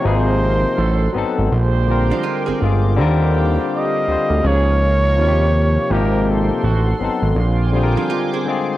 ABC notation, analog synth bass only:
X:1
M:4/4
L:1/16
Q:"Swing 16ths" 1/4=82
K:Eb
V:1 name="Analog synth bass" clef=bass
A,,,4 =A,,,2 _A,,, A,,, B,,,4 z G,,, G,,,2 | E,,4 z2 D,, D,, _D,,4 E,,4 | A,,,4 =A,,,2 _A,,, A,,, B,,,4 z4 |]